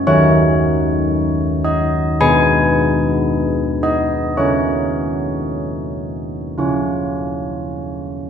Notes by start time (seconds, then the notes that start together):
0.07 D#3 D#4 F#4 C#5
1.65 D#5
2.21 B3 D#4 G#4 G#5
3.83 D#5
4.37 C#4 F#4 A#4 C#5
6.58 C#4 F4 C#5